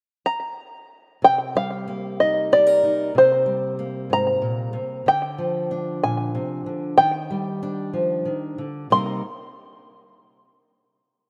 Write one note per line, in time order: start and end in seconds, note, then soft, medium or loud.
0.26 1.24 A#5 medium
1.22 3.14 C3 medium
1.22 1.57 G5 medium
1.55 3.11 G3 medium
1.55 2.20 F5 medium
1.88 3.78 A#3 medium
2.20 2.82 D#4 medium
2.20 2.52 D#5 medium
2.52 2.67 G4 medium
2.52 3.12 D5 medium
2.67 3.15 A#4 soft
2.83 3.11 D#4 medium
3.15 4.72 C3 medium
3.15 4.15 C5 medium
3.46 5.03 G3 medium
3.79 5.07 A#3 soft
4.10 4.41 G#2 medium
4.10 5.08 A#5 medium
4.42 4.74 A#2 medium
4.73 5.06 C3 medium
5.06 6.34 D3 medium
5.06 6.03 G5 medium
5.38 6.99 F3 medium
5.71 6.96 D4 medium
6.03 6.35 A#2 medium
6.03 6.64 G#5 medium
6.35 6.66 C3 medium
6.66 6.97 D3 medium
6.98 8.24 D#3 medium
6.98 8.55 G5 loud
7.31 7.93 G3 medium
7.63 8.88 D4 medium
7.93 8.27 F3 medium
8.25 8.58 D#3 medium
8.58 8.90 D3 medium
8.90 9.20 C3 medium
8.90 9.21 G3 medium
8.90 9.21 A#3 soft
8.90 9.21 D#4 soft
8.90 9.22 A#4 soft
8.90 9.22 C6 medium